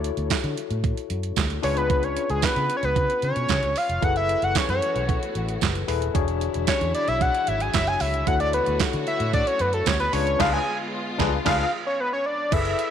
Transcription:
Already playing: E4 F#4 A4 C#5
0.04 closed hi-hat
0.17 D2, closed hi-hat
0.30 kick, snare, clap, closed hi-hat, tambourine
0.44 D3, closed hi-hat
0.57 closed hi-hat
0.71 A2, closed hi-hat
0.84 kick, closed hi-hat
0.97 closed hi-hat
1.10 F#2, closed hi-hat
1.23 closed hi-hat
1.36 D2, kick, snare, clap, closed hi-hat, tambourine
1.50 closed hi-hat
1.62 C#2 D4 F4 G#4 B4 C#5, open hi-hat
1.77 B4, closed hi-hat
1.90 kick, closed hi-hat
2.03 C#5, closed hi-hat
2.17 closed hi-hat
2.30 C#2 G#4, closed hi-hat
2.42 B4, kick, snare, clap, closed hi-hat, tambourine
2.56 C#3, closed hi-hat
2.70 closed hi-hat
2.77 C#5
2.83 C#2 B4, closed hi-hat
2.96 C#3, kick, closed hi-hat
3.10 closed hi-hat
3.22 C#3 C#5, closed hi-hat
3.36 B2, closed hi-hat
3.48 C#3, kick, snare, clap, closed hi-hat, tambourine
3.63 C#2, closed hi-hat
3.76 F5, open hi-hat
3.89 F1, closed hi-hat
4.01 F#1 E3 A3 B3 E4 F#4 G#4 A4 B4 F#5, kick, closed hi-hat
4.16 E5, closed hi-hat
4.29 closed hi-hat
4.42 F#1 F#5, closed hi-hat
4.55 C#5, muted fingered electric bass stroke, kick, snare, clap, closed hi-hat, tambourine
4.69 F#2 C#5, closed hi-hat
4.82 closed hi-hat
4.96 B1, closed hi-hat
5.09 kick, closed hi-hat
5.23 closed hi-hat
5.35 A1, closed hi-hat
5.49 closed hi-hat
5.61 F#1, kick, snare, clap, closed hi-hat, tambourine
5.75 closed hi-hat
5.88 D#1 E4 G#4 A4 B4, open hi-hat
6.02 closed hi-hat
6.14 E1 D3 F#3 D4 E4 F#4 G#4 C#5, kick, closed hi-hat
6.28 closed hi-hat
6.41 closed hi-hat
6.54 E1, closed hi-hat
6.67 C#5, muted fingered electric bass stroke, kick, snare, clap, closed hi-hat, tambourine
6.81 E2, closed hi-hat
6.95 D5, closed hi-hat
7.08 B1 E5, closed hi-hat
7.21 F#5, kick, closed hi-hat
7.35 closed hi-hat
7.47 G#1 E5, closed hi-hat
7.60 G#5, closed hi-hat
7.74 F#1 E5, kick, snare, clap, closed hi-hat, tambourine
7.87 G#5, closed hi-hat
8.00 C#2 E5, open hi-hat
8.14 closed hi-hat
8.27 D2 A3 E4 F#4 A4 C#5 F#5, kick, closed hi-hat
8.40 D5, closed hi-hat
8.53 B4, closed hi-hat
8.66 D2, closed hi-hat
8.79 muted fingered electric bass stroke, kick, snare, clap, closed hi-hat, tambourine
8.93 D3, closed hi-hat
9.07 E5, closed hi-hat
9.20 A2, closed hi-hat
9.33 D5, kick, closed hi-hat
9.47 C#5, closed hi-hat
9.59 F#2 B4, closed hi-hat
9.73 A4, closed hi-hat
9.86 D2 C#5, kick, snare, clap, closed hi-hat, tambourine
10.00 B4, closed hi-hat
10.12 C#2 G#3 B3 D4 F4 G#4 B4 C#5, open hi-hat
10.27 closed hi-hat
10.39 C#2 D4 F4 G#4 B4 F5, kick, snare, crash
10.53 G#5
11.18 C#2 D4 F4 G#4 B4, kick, snare
11.45 C#2 D4 F4 G#4 B4 F5, kick, snare, crash
11.60 F5
11.87 C#5
12.00 B4
12.13 C#5
12.26 D5
12.52 F#1 E4 G#4 A4 B4 E5, kick, closed hi-hat, crash
12.65 closed hi-hat
12.79 closed hi-hat

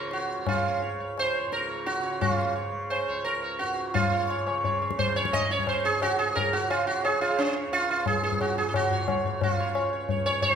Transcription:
Already playing: C#2 G#2 C#3 A#4 C#5
0.11 F#4, tabla te
0.37 C#3
0.47 F4, tabla na, tabla ge
0.65 C#5
0.82 C#5
0.91 C#2
1.00 C#5
1.18 C5, tabla na
1.35 C#5
1.45 G#2
1.52 A#4, tabla te
1.69 C#5
1.86 F#4, tabla te
1.99 C#3 C#5
2.21 F4, tabla na, tabla ge
2.38 C#5
2.53 C#3 C#5
2.90 C5, tabla na
3.07 C#2 C#5
3.24 A#4, tabla te
3.43 C#5
3.59 G#2 F#4, tabla te
3.94 G#2 F4 C#5, tabla tin, tabla ge
4.12 C#5
4.30 C#5, tabla na
4.46 C#3 C#5, tabla na
4.64 C#5, tabla tin, tabla ge
4.82 C#5, tabla na
4.91 tabla ke
4.99 C5, tabla tin, tabla ge
5.03 C#3
5.16 C#5, tabla na
5.25 tabla ke
5.33 D#5, tabla na, tabla ge
5.50 C#5, tabla te
5.56 C#2, tabla ge
5.67 C5, tabla na, tabla ge
5.85 G#4
6.02 F#4, tabla na
6.10 G#2
6.19 G#4
6.35 A#4, tabla tin, tabla ge
6.53 F#4, tabla na
6.62 C#3
6.70 F4, tabla na
6.87 F#4
7.05 G#4, tabla na
7.16 C#3
7.21 F4, tabla na
7.38 C#4, tabla na
7.56 C#5
7.67 C#2
7.72 F4, tabla tin
7.91 F4
8.06 G#4, tabla na, tabla ge
8.19 G#2
8.23 G#4, tabla te
8.32 tabla ge
8.41 F#4, tabla na, tabla ge
8.58 G#4, tabla te
8.69 C#3 G#4
8.74 F#4, tabla na, tabla ge
8.91 C#5, tabla ge
9.08 C#5, tabla na, tabla ge
9.25 C#3 C#5, tabla ge
9.41 F4, tabla tin, tabla ge
9.60 C#5
9.75 C#2 C#5, tabla na
9.93 C#5
10.09 C#5, tabla tin, tabla ge
10.26 G#2 C#5, tabla na
10.42 C5, tabla tin, tabla ge

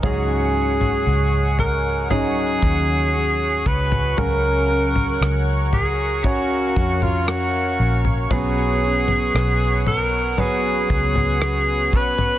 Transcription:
0.02 C#2 G#2 C#3 F#3 C#4 F#4 G#4 C#5 F#5 C#6, kick, floor tom
0.81 floor tom
1.07 C#2
1.59 A#4, floor tom
2.10 C#3 F#3 C#4 D#4 F#4 G#4, floor tom
2.62 D#2, kick
3.12 F#3 C#4 F#4 G#4
3.66 C#2 B4, kick
3.92 floor tom
4.16 C#2 C#3 F#3 C#4 F#4 A#4 F#5, floor tom
4.68 C#4 F#4 A#4
4.96 floor tom
5.21 C#2, cross-stick
5.73 G#4, floor tom
6.22 C#3 C#4 F#4 A#4 C#5 F5, kick, floor tom
6.76 F2, kick
7.02 F4, floor tom
7.28 C#4 F#4 A#4, cross-stick
7.79 A#1
8.05 floor tom
8.31 B1 F#3 B3 C#4 F#4 G#4 B4 F#5, kick, floor tom
8.84 C#4 F#4
9.08 floor tom
9.34 B1, cross-stick
9.87 A#4, floor tom
10.37 F#3 B3 C#4 F#4 G#4 B4, floor tom
10.90 C#2, kick
11.16 floor tom
11.41 B3 C#4 F#4 B4, cross-stick
11.93 B1 B4, kick
12.18 floor tom

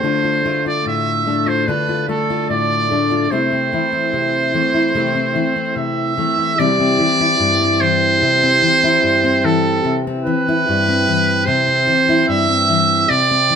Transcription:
Already playing: A3 C5
0.03 D3 D4 F4
0.24 F4
0.45 A3 F4
0.66 F4 D5
0.86 A2 E5
1.27 A3 D4
1.46 F4 C5
1.67 D3 D4 F4 B4
1.89 F4
2.08 A3 F4 A4
2.30 F4
2.50 A2 D5
2.91 A3 D4
3.11 F4
3.31 C3 A3 C4 E4 C5
3.52 C4
3.72 E3 E4
3.92 C4
4.13 C3
4.54 E3 A3
4.74 E4
4.94 C3 A3 C4 E4
5.15 C4
5.35 E3 E4
5.56 C4
5.76 C3 E5
6.17 E3 A3
6.39 E4
6.59 C3 E3 G3 C4 E4 D5
6.80 C4
6.99 E3
7.21 E4
7.39 G2
7.61 C4
7.81 E3 C5
8.22 C3
8.43 C4
8.62 E3
8.84 E4
9.03 G2
9.24 C4
9.44 E3 A4
9.85 C3
10.07 C4
10.25 E3 B4
10.48 E4
10.68 G2
10.88 C4
11.08 E3
11.46 C3 C5
11.68 C4
11.87 E3
12.09 E4
12.28 G2 E5
12.48 C4
12.69 E3
13.09 C3 D5
13.31 C4
13.50 E3

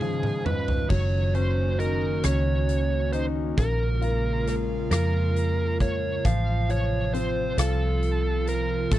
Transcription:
Already playing: C#2 G#2 C#3 D#3 G#3 C#4 F4 G#4
0.01 F3, high tom
0.23 mid tom
0.46 G#2 B4, mid tom
0.68 floor tom
0.90 F#1 D#3 F#3 A#3 C#4 F#4 C#5, kick, crash
1.34 C#4 C5, closed hi-hat
1.79 D#4 A#4, closed hi-hat
2.23 C#2 C#4 C#5, cross-stick, closed hi-hat
2.69 closed hi-hat
3.13 D#4 C5, closed hi-hat
3.57 A#1 C#3 G#3 A#3 F4 A#4, kick, closed hi-hat
4.01 F4, closed hi-hat
4.47 A#3, cross-stick, closed hi-hat
4.91 F2 F4 A#4, cross-stick, closed hi-hat
5.36 closed hi-hat
5.80 A#3 C#5, kick, closed hi-hat
6.24 A1 C3 F3 F4 F5, kick, closed hi-hat
6.69 F4 C#5, closed hi-hat
7.14 C4 C5, closed hi-hat
7.58 C2 F4 A4, cross-stick, closed hi-hat
8.03 closed hi-hat
8.47 A#4, closed hi-hat
8.91 A1 A3 A4, kick, closed hi-hat

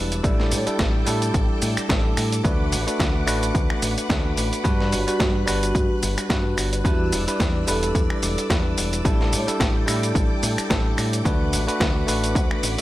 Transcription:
Already playing: E1 G3 D4 E4 B4 D5 E6
0.12 closed hi-hat, shaker
0.23 A1 G3 D4 E4 A4 G5 D6, kick, closed hi-hat, shaker
0.40 snare
0.52 A2, open hi-hat, shaker
0.66 G3 D4 E4 A4, muted fingered electric bass stroke, closed hi-hat, shaker
0.79 A1, kick, snare, closed hi-hat, shaker
1.06 A2 G3 D4 E4 A4, open hi-hat, shaker
1.22 closed hi-hat, shaker
1.34 A1, kick, closed hi-hat, shaker
1.62 A2, open hi-hat, shaker
1.77 finger snap, muted fingered electric bass stroke, closed hi-hat, shaker
1.89 A1 G3 D4 E4 A4, kick, snare, closed hi-hat, shaker
2.17 A2, finger snap, open hi-hat, shaker
2.32 closed hi-hat, shaker
2.43 D2 A3 D4 F#4 B4 F#5, kick, closed hi-hat, shaker
2.72 A1, open hi-hat, shaker
2.87 A3 D4 F#4 B4, muted fingered electric bass stroke, closed hi-hat, shaker
3.00 D2, kick, snare, closed hi-hat, shaker
3.26 A1 A3 D4 F#4 B4, finger snap, open hi-hat, shaker
3.43 closed hi-hat, shaker
3.55 D2, kick, closed hi-hat, shaker
3.70 finger snap
3.82 A1, open hi-hat, shaker
3.98 muted fingered electric bass stroke, closed hi-hat, shaker
4.09 D2 A3 D4 F#4 B4, kick, snare, closed hi-hat, shaker
4.37 A1, open hi-hat, shaker
4.53 closed hi-hat, shaker
4.64 G2 G3 D4 F#4 B4 F#6, kick, closed hi-hat, shaker
4.80 snare
4.92 G1 F#4, open hi-hat, shaker
5.07 G3 D4 F#4 B4, muted fingered electric bass stroke, closed hi-hat, shaker
5.20 G2, kick, snare, closed hi-hat, shaker
5.46 G1 G3 D4 F#4 B4, finger snap, open hi-hat, shaker
5.63 F#4, closed hi-hat, shaker
5.75 G2 F#4, kick, closed hi-hat, shaker
6.03 G1, open hi-hat, shaker
6.18 finger snap, muted fingered electric bass stroke, closed hi-hat, shaker
6.29 G2 G3 D4 F#4 B4, kick, snare, closed hi-hat, shaker
6.58 G1, finger snap, open hi-hat, shaker
6.73 closed hi-hat, shaker
6.84 E2 G3 D4 E4 F#4 B4 D5 E6, kick, closed hi-hat, shaker
7.12 E1, open hi-hat, shaker
7.27 G3 D4 E4 B4, muted fingered electric bass stroke, closed hi-hat, shaker
7.40 E2, kick, snare, closed hi-hat, shaker
7.67 E1 G3 D4 E4 A4 B4, open hi-hat, shaker
7.83 closed hi-hat, shaker
7.95 E2, kick, closed hi-hat, shaker
8.10 finger snap
8.22 E1, open hi-hat, shaker
8.38 muted fingered electric bass stroke, closed hi-hat, shaker
8.49 E2 G3 D4 E4 B4, kick, snare, closed hi-hat, shaker
8.77 E1, open hi-hat, shaker
8.93 closed hi-hat, shaker
9.04 A1 G3 D4 E4 A4 G5 D6, kick, closed hi-hat, shaker
9.21 snare
9.33 A2, open hi-hat, shaker
9.47 G3 D4 E4 A4, muted fingered electric bass stroke, closed hi-hat, shaker
9.60 A1, kick, snare, closed hi-hat, shaker
9.86 A2 G3 D4 E4 A4, finger snap, open hi-hat, shaker
10.03 closed hi-hat, shaker
10.15 A1, kick, closed hi-hat, shaker
10.43 A2, open hi-hat, shaker
10.58 finger snap, muted fingered electric bass stroke, closed hi-hat, shaker
10.69 A1 G3 D4 E4 A4, kick, snare, closed hi-hat, shaker
10.98 A2, finger snap, open hi-hat, shaker
11.13 closed hi-hat, shaker
11.25 D2 A3 D4 F#4 B4 F#5, kick, closed hi-hat, shaker
11.53 A1, open hi-hat, shaker
11.67 A3 D4 F#4 B4, muted fingered electric bass stroke, closed hi-hat, shaker
11.80 D2, kick, snare, closed hi-hat, shaker
12.06 A1 A3 D4 F#4 B4, open hi-hat, shaker
12.24 closed hi-hat, shaker
12.35 D2, kick, closed hi-hat, shaker
12.51 finger snap
12.63 A1, open hi-hat, shaker
12.78 A3 D4

